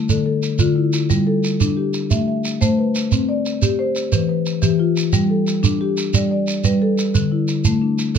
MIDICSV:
0, 0, Header, 1, 3, 480
1, 0, Start_track
1, 0, Tempo, 335758
1, 1570, Time_signature, 12, 3, 24, 8
1, 11698, End_track
2, 0, Start_track
2, 0, Title_t, "Marimba"
2, 0, Program_c, 0, 12
2, 135, Note_on_c, 0, 69, 63
2, 138, Note_on_c, 0, 50, 70
2, 351, Note_off_c, 0, 69, 0
2, 368, Note_on_c, 0, 69, 61
2, 613, Note_off_c, 0, 50, 0
2, 843, Note_on_c, 0, 65, 76
2, 847, Note_on_c, 0, 50, 83
2, 1081, Note_on_c, 0, 64, 60
2, 1089, Note_off_c, 0, 69, 0
2, 1329, Note_off_c, 0, 50, 0
2, 1567, Note_off_c, 0, 65, 0
2, 1569, Note_on_c, 0, 55, 85
2, 1806, Note_off_c, 0, 64, 0
2, 1813, Note_on_c, 0, 69, 63
2, 2051, Note_off_c, 0, 55, 0
2, 2292, Note_on_c, 0, 62, 87
2, 2526, Note_on_c, 0, 67, 65
2, 2533, Note_off_c, 0, 69, 0
2, 2772, Note_off_c, 0, 62, 0
2, 3011, Note_on_c, 0, 76, 60
2, 3012, Note_on_c, 0, 57, 69
2, 3238, Note_off_c, 0, 76, 0
2, 3250, Note_off_c, 0, 67, 0
2, 3255, Note_on_c, 0, 76, 55
2, 3493, Note_off_c, 0, 57, 0
2, 3731, Note_on_c, 0, 72, 65
2, 3737, Note_on_c, 0, 57, 82
2, 3975, Note_off_c, 0, 76, 0
2, 3979, Note_on_c, 0, 71, 61
2, 4215, Note_off_c, 0, 57, 0
2, 4453, Note_off_c, 0, 72, 0
2, 4461, Note_on_c, 0, 60, 79
2, 4697, Note_off_c, 0, 71, 0
2, 4698, Note_on_c, 0, 74, 67
2, 4938, Note_off_c, 0, 60, 0
2, 5176, Note_on_c, 0, 67, 84
2, 5417, Note_off_c, 0, 74, 0
2, 5418, Note_on_c, 0, 72, 68
2, 5656, Note_off_c, 0, 67, 0
2, 5892, Note_on_c, 0, 71, 61
2, 5894, Note_on_c, 0, 52, 82
2, 6118, Note_off_c, 0, 71, 0
2, 6135, Note_on_c, 0, 71, 58
2, 6137, Note_off_c, 0, 72, 0
2, 6375, Note_off_c, 0, 52, 0
2, 6608, Note_on_c, 0, 67, 69
2, 6609, Note_on_c, 0, 52, 88
2, 6854, Note_on_c, 0, 65, 66
2, 6855, Note_off_c, 0, 71, 0
2, 7092, Note_off_c, 0, 52, 0
2, 7332, Note_off_c, 0, 67, 0
2, 7335, Note_on_c, 0, 55, 86
2, 7574, Note_off_c, 0, 65, 0
2, 7576, Note_on_c, 0, 69, 61
2, 7815, Note_off_c, 0, 55, 0
2, 8048, Note_on_c, 0, 62, 87
2, 8296, Note_off_c, 0, 69, 0
2, 8306, Note_on_c, 0, 67, 71
2, 8531, Note_off_c, 0, 62, 0
2, 8781, Note_on_c, 0, 74, 56
2, 8782, Note_on_c, 0, 55, 70
2, 9006, Note_off_c, 0, 74, 0
2, 9020, Note_off_c, 0, 67, 0
2, 9023, Note_on_c, 0, 74, 62
2, 9258, Note_off_c, 0, 55, 0
2, 9499, Note_on_c, 0, 55, 87
2, 9500, Note_on_c, 0, 71, 67
2, 9738, Note_off_c, 0, 74, 0
2, 9746, Note_on_c, 0, 69, 72
2, 9976, Note_off_c, 0, 55, 0
2, 10216, Note_off_c, 0, 71, 0
2, 10216, Note_on_c, 0, 50, 84
2, 10458, Note_on_c, 0, 64, 61
2, 10459, Note_off_c, 0, 69, 0
2, 10694, Note_off_c, 0, 50, 0
2, 10934, Note_on_c, 0, 57, 84
2, 11172, Note_on_c, 0, 62, 64
2, 11174, Note_off_c, 0, 64, 0
2, 11412, Note_off_c, 0, 57, 0
2, 11650, Note_on_c, 0, 50, 77
2, 11651, Note_on_c, 0, 69, 62
2, 11698, Note_off_c, 0, 50, 0
2, 11698, Note_off_c, 0, 62, 0
2, 11698, Note_off_c, 0, 69, 0
2, 11698, End_track
3, 0, Start_track
3, 0, Title_t, "Shekere"
3, 133, Note_on_c, 9, 82, 72
3, 275, Note_off_c, 9, 82, 0
3, 609, Note_on_c, 9, 82, 50
3, 752, Note_off_c, 9, 82, 0
3, 840, Note_on_c, 9, 82, 76
3, 983, Note_off_c, 9, 82, 0
3, 1329, Note_on_c, 9, 82, 60
3, 1472, Note_off_c, 9, 82, 0
3, 1575, Note_on_c, 9, 82, 74
3, 1718, Note_off_c, 9, 82, 0
3, 2056, Note_on_c, 9, 82, 54
3, 2199, Note_off_c, 9, 82, 0
3, 2296, Note_on_c, 9, 82, 71
3, 2439, Note_off_c, 9, 82, 0
3, 2769, Note_on_c, 9, 82, 61
3, 2912, Note_off_c, 9, 82, 0
3, 3014, Note_on_c, 9, 82, 77
3, 3157, Note_off_c, 9, 82, 0
3, 3495, Note_on_c, 9, 82, 58
3, 3638, Note_off_c, 9, 82, 0
3, 3741, Note_on_c, 9, 82, 79
3, 3884, Note_off_c, 9, 82, 0
3, 4220, Note_on_c, 9, 82, 66
3, 4363, Note_off_c, 9, 82, 0
3, 4458, Note_on_c, 9, 82, 74
3, 4601, Note_off_c, 9, 82, 0
3, 4943, Note_on_c, 9, 82, 56
3, 5086, Note_off_c, 9, 82, 0
3, 5178, Note_on_c, 9, 82, 76
3, 5321, Note_off_c, 9, 82, 0
3, 5653, Note_on_c, 9, 82, 54
3, 5796, Note_off_c, 9, 82, 0
3, 5894, Note_on_c, 9, 82, 82
3, 6037, Note_off_c, 9, 82, 0
3, 6376, Note_on_c, 9, 82, 59
3, 6519, Note_off_c, 9, 82, 0
3, 6612, Note_on_c, 9, 82, 80
3, 6755, Note_off_c, 9, 82, 0
3, 7099, Note_on_c, 9, 82, 61
3, 7242, Note_off_c, 9, 82, 0
3, 7329, Note_on_c, 9, 82, 75
3, 7472, Note_off_c, 9, 82, 0
3, 7821, Note_on_c, 9, 82, 59
3, 7964, Note_off_c, 9, 82, 0
3, 8060, Note_on_c, 9, 82, 81
3, 8203, Note_off_c, 9, 82, 0
3, 8539, Note_on_c, 9, 82, 60
3, 8682, Note_off_c, 9, 82, 0
3, 8775, Note_on_c, 9, 82, 82
3, 8918, Note_off_c, 9, 82, 0
3, 9253, Note_on_c, 9, 82, 57
3, 9396, Note_off_c, 9, 82, 0
3, 9494, Note_on_c, 9, 82, 73
3, 9637, Note_off_c, 9, 82, 0
3, 9980, Note_on_c, 9, 82, 67
3, 10123, Note_off_c, 9, 82, 0
3, 10219, Note_on_c, 9, 82, 82
3, 10362, Note_off_c, 9, 82, 0
3, 10694, Note_on_c, 9, 82, 60
3, 10837, Note_off_c, 9, 82, 0
3, 10931, Note_on_c, 9, 82, 89
3, 11074, Note_off_c, 9, 82, 0
3, 11414, Note_on_c, 9, 82, 61
3, 11557, Note_off_c, 9, 82, 0
3, 11654, Note_on_c, 9, 82, 72
3, 11698, Note_off_c, 9, 82, 0
3, 11698, End_track
0, 0, End_of_file